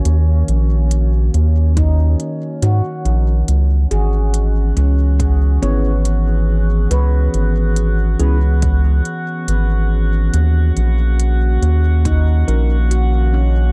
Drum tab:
HH |xxxxxxxx|xxxxxxx-|xxxxxxx-|xxxxxxx-|
BD |----o---|----o---|----o---|----o---|